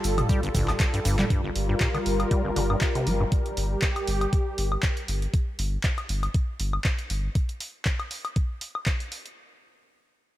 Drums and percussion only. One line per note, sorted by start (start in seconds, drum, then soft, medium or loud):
0.04 open hi-hat medium
0.04 shaker medium
0.18 closed hi-hat medium
0.18 mid tom medium
0.18 high woodblock medium
0.18 shaker soft
0.29 kick loud
0.29 closed hi-hat medium
0.29 shaker soft
0.43 closed hi-hat soft
0.43 shaker soft
0.55 kick medium
0.55 mid tom medium
0.55 open hi-hat loud
0.55 shaker medium
0.68 clap soft
0.68 closed hi-hat soft
0.68 high woodblock medium
0.68 shaker soft
0.80 kick loud
0.80 clap loud
0.80 closed hi-hat medium
0.80 shaker soft
0.94 closed hi-hat medium
0.94 shaker soft
1.05 open hi-hat medium
1.05 shaker medium
1.19 clap medium
1.19 closed hi-hat soft
1.19 mid tom medium
1.19 shaker soft
1.30 kick loud
1.30 closed hi-hat medium
1.56 open hi-hat loud
1.80 kick loud
1.80 clap loud
1.80 closed hi-hat medium
1.95 closed hi-hat soft
1.95 high woodblock medium
2.06 open hi-hat medium
2.20 closed hi-hat medium
2.20 high woodblock medium
2.31 kick loud
2.31 closed hi-hat medium
2.56 open hi-hat loud
2.70 high woodblock medium
2.81 kick loud
2.81 clap loud
2.81 closed hi-hat medium
2.95 closed hi-hat medium
3.07 open hi-hat medium
3.32 kick loud
3.32 closed hi-hat medium
3.46 closed hi-hat soft
3.57 open hi-hat loud
3.82 kick loud
3.82 clap loud
3.82 closed hi-hat medium
3.96 closed hi-hat soft
3.96 high woodblock medium
4.08 open hi-hat medium
4.21 closed hi-hat medium
4.21 high woodblock medium
4.33 kick loud
4.33 closed hi-hat medium
4.58 open hi-hat loud
4.72 high woodblock medium
4.83 kick loud
4.83 clap loud
4.83 closed hi-hat medium
4.97 closed hi-hat soft
5.08 open hi-hat loud
5.22 closed hi-hat soft
5.34 kick loud
5.34 closed hi-hat medium
5.59 open hi-hat loud
5.84 kick loud
5.84 clap loud
5.84 closed hi-hat medium
5.98 closed hi-hat soft
5.98 high woodblock medium
6.09 open hi-hat medium
6.23 closed hi-hat soft
6.23 high woodblock medium
6.34 kick loud
6.34 closed hi-hat medium
6.60 open hi-hat loud
6.73 high woodblock medium
6.84 kick loud
6.84 clap loud
6.84 closed hi-hat medium
6.99 closed hi-hat soft
7.10 open hi-hat medium
7.35 kick loud
7.35 closed hi-hat medium
7.49 closed hi-hat soft
7.60 open hi-hat loud
7.85 kick loud
7.85 clap loud
7.85 closed hi-hat medium
8.00 closed hi-hat soft
8.00 high woodblock medium
8.11 open hi-hat medium
8.25 closed hi-hat soft
8.25 high woodblock medium
8.36 kick loud
8.36 closed hi-hat medium
8.61 open hi-hat loud
8.75 high woodblock medium
8.86 kick loud
8.86 clap loud
8.86 closed hi-hat medium
9.00 closed hi-hat soft
9.12 open hi-hat medium
9.26 closed hi-hat soft